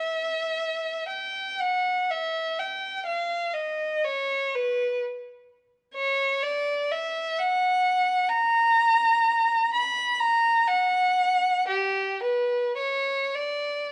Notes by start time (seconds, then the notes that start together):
Already playing: E5
1.09 G5
1.60 F#5
2.11 E5
2.59 G5
3.07 F5
3.54 D#5
4.04 C#5
4.55 B4
5.95 C#5
6.43 D5
6.92 E5
7.39 F#5
8.29 A#5
9.74 B5
10.20 A#5
10.68 F#5
11.68 G4
12.23 B4
12.77 C#5
13.35 D5